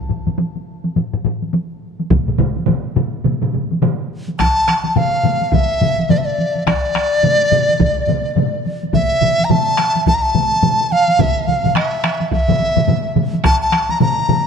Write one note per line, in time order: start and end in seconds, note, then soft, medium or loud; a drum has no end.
0.09 taiko low-mid medium
0.27 taiko low-mid medium
0.27 taiko high medium
0.38 taiko high medium
0.56 taiko high soft
0.84 taiko high medium
0.96 taiko low-mid medium
0.96 taiko high medium
1.13 taiko low-mid medium
1.25 taiko low-mid medium
1.42 taiko high soft
1.53 taiko high medium
2.00 taiko high medium
2.10 taiko loud
2.10 taiko low-mid medium
2.10 taiko mid medium
2.10 taiko high medium
2.27 taiko low-mid medium
2.27 taiko mid medium
2.39 taiko medium
2.39 taiko low-mid loud
2.39 taiko mid medium
2.57 taiko high medium
2.67 taiko low-mid medium
2.67 taiko mid loud
2.67 taiko high medium
2.96 taiko low-mid loud
2.96 taiko mid medium
3.24 taiko low-mid medium
3.24 taiko mid medium
3.24 taiko high medium
3.41 taiko low-mid medium
3.41 taiko mid medium
3.53 taiko low-mid medium
3.53 taiko mid medium
3.71 taiko high medium
3.82 taiko low-mid loud
3.82 taiko mid loud
3.82 taiko high medium
4.28 taiko high soft
4.39 4.90 A5 loud
4.39 taiko rim medium
4.39 taiko medium
4.39 taiko high medium
4.68 taiko rim medium
4.68 taiko high soft
4.84 taiko high medium
4.90 4.98 A5 medium
4.96 5.55 F5 medium
4.96 taiko low-mid medium
4.96 taiko mid medium
4.96 taiko high medium
5.24 taiko low-mid medium
5.24 taiko mid medium
5.24 taiko high medium
5.41 taiko high soft
5.53 6.12 E5 medium
5.53 taiko loud
5.53 taiko low-mid medium
5.53 taiko mid medium
5.53 taiko high medium
5.81 taiko low-mid medium
5.81 taiko mid medium
5.81 taiko high soft
5.98 taiko high soft
6.09 6.19 D5 medium
6.09 taiko low-mid medium
6.09 taiko mid medium
6.09 taiko high medium
6.18 6.27 E5 medium
6.25 6.66 D5 medium
6.38 taiko high medium
6.55 taiko high soft
6.67 8.33 D5 medium
6.67 taiko rim medium
6.67 taiko medium
6.67 taiko high medium
6.95 taiko rim medium
6.95 taiko high medium
7.23 taiko low-mid medium
7.23 taiko mid medium
7.23 taiko high medium
7.51 taiko low-mid medium
7.51 taiko mid loud
7.51 taiko high medium
7.68 taiko high medium
7.80 taiko loud
7.80 taiko low-mid medium
7.80 taiko mid medium
7.80 taiko high medium
8.07 taiko low-mid medium
8.07 taiko mid medium
8.07 taiko high soft
8.36 taiko low-mid medium
8.36 taiko mid loud
8.36 taiko high medium
8.66 taiko high medium
8.83 taiko high soft
8.93 9.46 E5 medium
8.93 taiko medium
8.93 taiko low-mid loud
8.93 taiko mid medium
8.93 taiko high medium
9.21 taiko low-mid medium
9.21 taiko mid medium
9.21 taiko high medium
9.38 taiko high medium
9.45 9.52 A#5 medium
9.50 10.06 A5 medium
9.50 taiko low-mid loud
9.50 taiko mid medium
9.50 taiko high medium
9.78 taiko rim medium
9.78 taiko high medium
9.95 taiko high medium
10.06 10.16 A5 loud
10.06 taiko loud
10.06 taiko high medium
10.14 10.24 A#5 medium
10.22 10.93 A5 loud
10.35 taiko low-mid medium
10.35 taiko mid medium
10.35 taiko high medium
10.52 taiko high soft
10.63 taiko low-mid medium
10.63 taiko mid medium
10.63 taiko high medium
10.91 11.22 F5 medium
10.91 taiko high medium
11.08 taiko high soft
11.19 11.49 E5 medium
11.19 taiko loud
11.19 taiko low-mid loud
11.19 taiko mid medium
11.19 taiko high medium
11.47 11.78 F5 medium
11.47 taiko low-mid medium
11.47 taiko mid medium
11.47 taiko high medium
11.64 taiko low-mid medium
11.64 taiko mid medium
11.64 taiko high medium
11.75 12.31 E5 medium
11.75 taiko rim medium
11.75 taiko high medium
12.04 taiko rim medium
12.04 taiko high medium
12.20 taiko high medium
12.32 13.12 E5 medium
12.32 taiko loud
12.32 taiko high medium
12.49 taiko low-mid loud
12.49 taiko mid loud
12.60 taiko high soft
12.77 taiko low-mid loud
12.77 taiko mid medium
12.77 taiko high soft
12.88 taiko low-mid loud
12.88 taiko mid medium
12.88 taiko high medium
13.15 taiko low-mid loud
13.15 taiko mid medium
13.15 taiko high medium
13.33 taiko high medium
13.44 13.61 A5 loud
13.44 taiko rim medium
13.44 taiko loud
13.44 taiko high medium
13.62 13.92 A5 medium
13.72 taiko rim medium
13.72 taiko high medium
13.89 14.01 A#5 medium
13.89 taiko high medium
14.00 14.47 A#5 medium
14.00 taiko low-mid loud
14.00 taiko mid loud
14.00 taiko high medium
14.29 taiko low-mid loud
14.29 taiko mid medium
14.29 taiko high medium